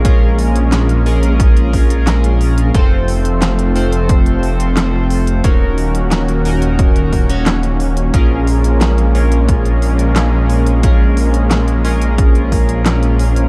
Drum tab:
HH |x-oxxxoxxxoxxxox|x-oxxxoxxxoxx-ox|x-oxxxoxxxoxxxox|x-oxxxoxxxoxx-ox|
CP |----x-------x---|----x-------x---|----x-------x---|----x-------x---|
SD |----o-------o---|----o-------o---|----o-------o---|----o-------o---|
BD |o-------o-o-----|o-------o-------|o-------o-o-----|o-------o-------|

HH |x-oxxxoxxxoxxxox|
CP |----x-------x---|
SD |----o-------o---|
BD |o-------o-o-----|